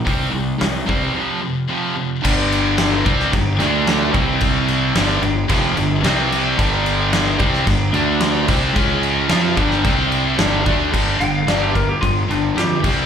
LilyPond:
<<
  \new Staff \with { instrumentName = "Lead electric guitar" } { \time 4/4 \key c \major \tempo 4 = 110 r1 | r1 | r1 | r1 |
r1 | r8 g''16 f''16 d''16 g'16 bes'16 g'16 f'16 r16 d'8 g'8 r8 | }
  \new Staff \with { instrumentName = "Distorted electric guitar" } { \clef bass \time 4/4 \key c \major <c g c'>8 <c g>8 <c g>8 <c g c'>8 <f, c f>8 <f, c>8 <f, c f>8 <f, c>8 | <g, d g>4. <c g c'>8 <g, d>8 <d a d'>4 <c g c'>8~ | <c g c'>4 <g, d g>8 <g, d>8 <f, c f>8 <g, d>8 <c g c'>4 | <g, d g>4. <c g c'>8 <g, d>8 <d a d'>4 <c g c'>8 |
<cis gis cis'>4 <f c' f'>8 <g, d g>8 <c g c'>4 <g, d g>8 <d a d'>8 | <g, d g>8 <g, d>8 <g, d g>8 <g, d>8 <g, d>8 <g, d>8 <g, d>8 <c g c'>8 | }
  \new Staff \with { instrumentName = "Distorted electric guitar" } { \clef bass \time 4/4 \key c \major <c g c'>8 <c g>8 <c g>8 <c g c'>8 <f, c f>8 <f, c>8 <f, c f>8 <f, c>8 | <g, d g>4. <c g c'>8 <g, d>8 <d a d'>4 <c g c'>8~ | <c g c'>4 <g, d g>8 <g, d>8 <f, c f>8 <g, d>8 <c g c'>4 | <g, d g>4. <c g c'>8 <g, d>8 <d a d'>4 <c g c'>8 |
<cis gis cis'>4 <f c' f'>8 <g, d g>8 <c g c'>4 <g, d g>8 <d a d'>8 | <g, d g>8 <g, d>8 <g, d g>8 <g, d>8 <g, d>8 <g, d>8 <g, d>8 <c g c'>8 | }
  \new Staff \with { instrumentName = "Distorted electric guitar" } { \clef bass \time 4/4 \key c \major r1 | <g, d g>4. <c g c'>8 <g, d>8 <d a d'>4 <c g c'>8~ | <c g c'>4 <g, d g>8 <g, d>8 <f, c f>8 <g, d>8 <c g c'>4 | <g, d g>4. <c g c'>8 <g, d>8 <d a d'>4 <c g c'>8 |
<cis gis cis'>4 <f c' f'>8 <g, d g>8 <c g c'>4 <g, d g>8 <d a d'>8 | <g, d g>2.~ <g, d g>8 <c g c'>8 | }
  \new Staff \with { instrumentName = "Fingered electric bass" } { \clef bass \time 4/4 \key c \major c,8 c,8 c,8 c,8 r2 | g,,4. c,8 g,,8 d,4 c,8~ | c,4 g,,8 g,,8 f,,8 g,,8 c,4 | g,,4. c,8 g,,8 d,4 c,8 |
cis,4 f,8 g,,8 c,4 g,,8 d,8 | g,,8 g,,8 g,,4 g,,8 g,,8 f,8 c,8 | }
  \new DrumStaff \with { instrumentName = "Drums" } \drummode { \time 4/4 <hho bd>4 <hho sn>8 bd8 r4 r4 | <cymc bd>8 cymc8 <cymc sn>8 <cymc bd>16 sn16 <cymc bd>8 <cymc sn>8 <cymc sn>8 <cymc bd>8 | <cymc bd>8 cymc8 <cymc sn>8 cymc8 <cymc bd>8 cymc8 <cymc sn>8 cymc8 | <cymc bd>8 cymc8 <cymc sn>8 <cymc bd>16 sn16 <cymc bd>8 cymc8 <cymc sn>8 <cymc bd>8 |
<cymc bd>8 cymc8 <cymc sn>8 <cymc bd>16 sn16 <cymc bd>8 cymc8 <cymc sn>8 <cymc bd>8 | <cymc bd>8 cymc8 <cymc sn>8 <cymc bd>8 <cymc bd>8 cymc8 <cymc sn>8 <cymc bd>8 | }
>>